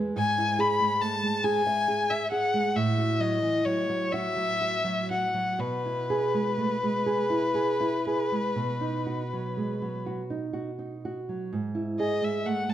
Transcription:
0.00 0.14 E2 medium
0.00 0.16 G#3 medium
0.16 2.73 G#2 medium
0.16 0.62 G#5 loud
0.38 0.72 E4 medium
0.59 0.93 G#4 medium
0.59 1.03 B5 medium
0.80 1.15 G#3 medium
1.01 1.23 A3 soft
1.01 1.45 A5 medium
1.24 1.58 G#3 medium
1.44 1.66 G#4 medium
1.44 2.12 G#5 loud
1.66 2.02 E5 medium
1.88 2.24 G#4 medium
2.10 2.31 E5 medium
2.10 2.46 E5 medium
2.31 2.68 G#4 medium
2.31 2.78 F#5 medium
2.54 2.77 G#3 medium
2.76 5.56 A2 medium
2.76 3.22 E5 medium
2.98 3.35 F#4 medium
3.20 3.42 F#3 medium
3.20 3.67 D#5 medium
3.42 3.65 E3 medium
3.65 3.88 F#3 soft
3.65 4.13 C#5 medium
3.89 4.28 F#3 medium
4.12 4.52 F#4 medium
4.12 5.10 E5 medium
4.36 4.76 F#3 soft
4.61 5.01 F#4 medium
4.84 5.25 F#3 medium
5.11 5.50 F#4 medium
5.11 5.61 F#5 medium
5.34 5.60 F#3 soft
5.59 8.52 B2 medium
5.59 10.06 B4 medium
5.86 6.24 E4 soft
6.10 6.48 G#4 medium
6.34 6.72 G#3 soft
6.58 6.82 A3 soft
6.83 7.21 G#3 soft
7.06 7.45 G#4 medium
7.30 7.70 E4 soft
7.54 7.95 G#4 soft
7.80 8.21 E4 soft
8.07 8.47 G#4 soft
8.32 8.57 G#3 soft
8.56 11.49 B2 medium
8.81 9.21 D#4 soft
9.06 9.47 F#4 soft
9.33 9.73 F#3 soft
9.57 9.82 G#3 soft
9.82 10.21 F#3 soft
10.06 10.45 F#4 soft
10.30 10.70 D#4 soft
10.53 10.94 F#4 soft
10.79 11.19 D#4 soft
11.05 11.44 F#4 soft
11.29 11.53 F#3 soft
11.53 12.74 G#2 medium
11.75 12.13 E4 soft
12.00 12.37 G#4 soft
12.00 12.26 D#5 medium
12.22 12.59 G#3 soft
12.22 12.48 E5 medium
12.46 12.68 A3 soft
12.46 12.71 F#5 medium
12.69 12.74 G#3 soft
12.69 12.74 A5 medium

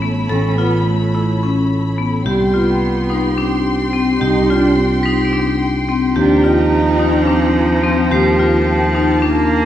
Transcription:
0.00 0.27 A1 medium
0.00 0.31 A3 medium
0.00 0.24 B3 medium
0.00 2.23 A4 medium
0.00 2.23 C#5 medium
0.00 2.23 B5 medium
0.29 2.22 A1 medium
0.29 0.58 C#4 medium
0.29 0.51 A4 medium
0.58 0.85 B3 medium
0.58 1.02 F4 medium
0.86 1.66 A3 medium
1.15 1.36 E4 medium
1.43 1.86 C#4 medium
1.98 2.20 B3 medium
2.25 4.17 C2 medium
2.25 2.55 G3 medium
2.25 6.13 G4 medium
2.25 2.48 G4 medium
2.25 9.65 G5 medium
2.25 6.13 C6 medium
2.54 3.40 B3 medium
2.54 2.97 F4 medium
3.10 3.31 D#4 medium
3.38 4.19 C4 medium
3.38 3.81 D4 medium
3.93 4.15 C4 medium
4.20 6.13 C2 medium
4.20 4.50 D#4 medium
4.20 4.43 G4 medium
4.49 4.77 D4 medium
4.49 4.93 F4 medium
4.76 5.60 C4 medium
5.03 5.27 D#4 medium
5.03 5.90 B6 medium
5.25 6.08 D7 soft
5.33 5.76 D4 medium
5.89 6.10 C4 medium
6.15 8.08 D#2 medium
6.15 9.25 F3 medium
6.15 6.46 D4 medium
6.15 9.65 F4 medium
6.15 6.38 G4 medium
6.15 8.10 A#5 medium
6.44 7.30 D#4 loud
6.44 6.87 F4 medium
6.99 7.21 D#4 medium
7.27 8.13 C4 medium
7.27 7.71 D4 medium
7.83 8.05 C4 medium
8.11 9.65 D#2 medium
8.11 9.23 A#3 medium
8.11 8.33 G4 medium
8.11 9.65 A5 medium
8.11 8.98 C7 medium
8.39 8.83 F4 medium
8.95 9.17 D#4 medium
9.22 9.65 A#3 loud
9.22 9.65 D4 medium

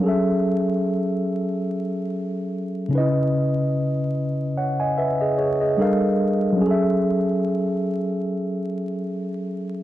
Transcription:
0.00 2.85 F#3 medium
0.00 2.86 C#4 medium
0.00 2.87 G#4 medium
0.06 2.88 A4 medium
0.06 2.90 E5 medium
2.89 5.74 C#3 medium
2.89 5.75 C#4 medium
2.93 2.99 D#4 soft
2.93 4.54 B4 medium
2.98 5.79 E4 medium
2.98 4.56 D#5 medium
4.58 4.78 C#5 soft
4.58 4.78 F#5 medium
4.80 4.97 D#5 medium
4.80 4.96 G#5 medium
4.98 5.19 B4 medium
4.98 5.19 E5 medium
5.21 5.38 G#4 medium
5.21 5.38 D#5 medium
5.38 5.60 G#4 medium
5.38 5.60 C#5 medium
5.61 6.00 G#4 soft
5.61 6.00 D#5 medium
5.77 6.60 G3 medium
5.77 6.61 D4 medium
5.77 6.62 A4 medium
5.77 6.62 A#4 medium
5.82 6.62 F5 medium
6.53 9.83 F#3 medium
6.57 9.83 C#4 medium
6.61 9.83 G#4 medium
6.66 9.83 A4 medium
6.71 9.83 E5 medium

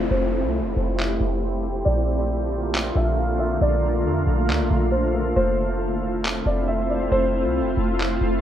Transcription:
0.00 1.83 A3 medium
0.00 1.83 C4 medium
0.00 1.83 E4 medium
0.00 downlifter medium
0.11 0.45 F1 loud
0.11 1.84 G4 medium
0.11 0.52 C5 loud
0.44 0.62 C2 loud
0.60 0.76 F1 medium
0.77 1.19 F1 loud
1.00 clap loud
1.20 1.83 F1 loud
1.85 2.92 A#1 loud
1.85 5.33 D3 medium
1.85 8.41 A3 medium
1.85 5.33 A#3 medium
1.85 5.33 F4 medium
1.85 2.91 D5 medium
2.75 clap loud
2.96 3.59 A#1 loud
2.96 3.17 E5 medium
3.17 3.38 F5 medium
3.39 3.60 E5 medium
3.61 4.07 A#1 loud
3.61 4.03 D5 medium
4.05 4.26 F2 medium
4.27 4.50 A#1 loud
4.49 4.61 D2 medium
4.49 clap loud
4.60 4.70 A#1 medium
4.71 5.34 A#1 loud
4.92 5.13 C5 medium
5.15 5.35 A#4 medium
5.36 6.42 F1 loud
5.36 8.41 C4 medium
5.36 8.41 E4 medium
5.36 8.41 F4 medium
5.36 6.42 C5 loud
6.25 clap loud
6.46 7.09 F1 loud
6.46 6.67 D5 medium
6.68 6.89 E5 medium
6.90 7.11 D5 medium
7.12 7.46 F1 loud
7.12 7.53 C5 loud
7.44 7.62 C2 medium
7.61 7.77 F1 medium
7.77 8.19 F1 loud
8.00 clap loud
8.21 8.41 F1 loud

